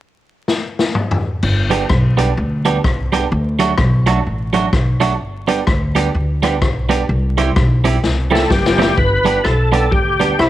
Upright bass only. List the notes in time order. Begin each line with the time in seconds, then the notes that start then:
1.43 G1
1.90 B1
2.37 D2
2.84 C2
3.32 D2
3.78 B1
4.26 A1
4.73 B1
5.21 G1
5.68 D2
6.14 D2
6.62 B1
7.09 C2
7.56 B1
8.04 C2
8.51 F#1
8.98 G1
9.45 B1
9.92 D2
10.39 C2